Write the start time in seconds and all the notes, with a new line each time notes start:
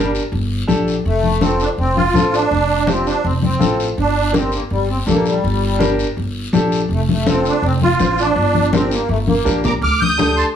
Already playing: G1 G3 D4 G4 A#4
0.15 short guiro
0.32 G1, high conga, long guiro
0.67 A#1 D4 G4 A4, high conga, short guiro
0.88 short guiro
1.05 F1 A3, high conga, long guiro
1.23 high conga
1.41 C4 F4 A4, high conga, short guiro
1.60 D4, short guiro
1.78 F1 C4, high conga, long guiro
1.96 F4, high conga
2.14 A1 C4 F4 A4, high conga, short guiro
2.33 D4, short guiro
2.51 F1, high conga, long guiro
2.86 C4 F4 G4, high conga, short guiro
3.06 D4, short guiro
3.24 F1 C4, high conga, long guiro
3.42 C4, high conga
3.59 A1 C4 F4 A4, high conga, short guiro
3.80 short guiro
3.98 G1 D4, high conga, long guiro
4.32 C4 D4 G4 A#4, high conga, short guiro
4.52 A#3, short guiro
4.70 G1 G3, high conga, long guiro
4.89 C4
5.06 A#1 A#3 D4 G4 A4, high conga, short guiro
5.26 G3, short guiro
5.44 G1, high conga, long guiro
5.79 D4 G4 A#4, high conga, short guiro
5.99 short guiro
6.17 G1, high conga, long guiro
6.53 A#1 D4 G4 A4, high conga, short guiro
6.72 short guiro
6.89 F1, high conga, long guiro
6.94 A3
7.09 A3, high conga
7.26 C4 F4 A4, high conga, short guiro
7.45 D4, short guiro
7.62 F1 C4, high conga, long guiro
7.81 F4, high conga
7.99 A1 C4 F4 C5, high conga, short guiro
8.18 D4, short guiro
8.36 G1, high conga, long guiro
8.54 high conga
8.73 C4 D4 G4 A#4, high conga, short guiro
8.91 A#3, short guiro
9.09 G1 A3, high conga, long guiro
9.27 A#3, high conga
9.45 A#1 D4 G4 A#4, short guiro
9.64 A#5 D6, low conga, short guiro
9.82 D2 D6 F6, high conga, long guiro
10.00 D#6 G6, high conga
10.18 D4 G4 A4, high conga, short guiro
10.36 A5 C6, short guiro